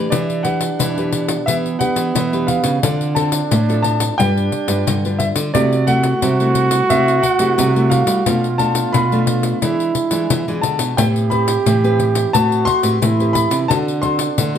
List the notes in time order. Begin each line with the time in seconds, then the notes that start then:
Already playing: D4 G4 B4
0.10 E3 D4 D5, pandeiro
0.30 pandeiro
0.43 D4 G4 B4 F#5, pandeiro
0.61 pandeiro
0.79 B2 E3, pandeiro
0.97 D4 G4 B4, pandeiro
1.13 pandeiro
1.28 pandeiro
1.46 E3 B3 D4 G4 B4 E5, pandeiro
1.66 pandeiro
1.79 D4 G4 B4 F#5, pandeiro
1.96 E3, pandeiro
2.15 B2 E3, pandeiro
2.33 D4 G4 B4, pandeiro
2.47 F5, pandeiro
2.64 C#3, pandeiro
2.82 D3 C4 D4 F4 A4, pandeiro
3.01 pandeiro
3.15 C4 F4 A4 A5, pandeiro
3.32 pandeiro
3.51 A2, pandeiro
3.69 C4 F4 A4, pandeiro
3.82 A5, pandeiro
4.00 pandeiro
4.18 G2 G3 D4 F4 B4 G5, pandeiro
4.37 pandeiro
4.52 pandeiro
4.68 G2 D4 F4 B4, pandeiro
4.87 G2 D3, pandeiro
5.05 D4 F4 B4, pandeiro
5.19 E5, pandeiro
5.36 D3, pandeiro
5.54 C3 A3 E4 F#4 G4 D5, pandeiro
5.73 pandeiro
5.87 A3 E4 F#5, pandeiro
6.03 pandeiro
6.22 C3 G3, pandeiro
6.40 A3 E4, pandeiro
6.55 pandeiro
6.71 pandeiro
6.90 C3 A3 E4 E5, pandeiro
7.08 pandeiro
7.23 F#5, pandeiro
7.39 C3 A3 E4 G4, pandeiro
7.58 C3 G3, pandeiro
7.76 A3 E4, pandeiro
7.90 F5, pandeiro
8.07 G3, pandeiro
8.26 B2 A3 D4 F4, pandeiro
8.44 pandeiro
8.58 A3 D4 F4 A5, pandeiro
8.75 pandeiro
8.93 B2 B5, pandeiro
9.12 A3 D4 F4, pandeiro
9.27 pandeiro
9.43 pandeiro
9.62 E3 G#3 D4 E4, pandeiro
9.80 pandeiro
9.95 pandeiro
10.11 E3 G#3 D4 F4, pandeiro
10.30 B2 E3, pandeiro
10.48 E3 G#3 D4 F4, pandeiro
10.61 D3 A5, pandeiro
10.79 B2, pandeiro
10.97 A2 A3 C4 G4 B4 G5, pandeiro
11.16 pandeiro
11.30 C4 G4 B4 B5, pandeiro
11.48 pandeiro
11.66 A2 E3, pandeiro
11.84 C4 G4 B4, pandeiro
12.00 pandeiro
12.15 pandeiro
12.33 A2 A3 C4 F#4 B4 A5, pandeiro
12.52 pandeiro
12.65 C6, pandeiro
12.83 A2 C4 G4 B4, pandeiro
13.02 A2 E3 E4, pandeiro
13.20 C4 G4 B4, pandeiro
13.33 B5, pandeiro
13.51 C3, pandeiro
13.68 D3 C4 D4 F#4 A4 A5, pandeiro
13.88 pandeiro
14.02 C4 F#4 A4 C6, pandeiro
14.19 pandeiro
14.38 A2 D3, pandeiro
14.55 C4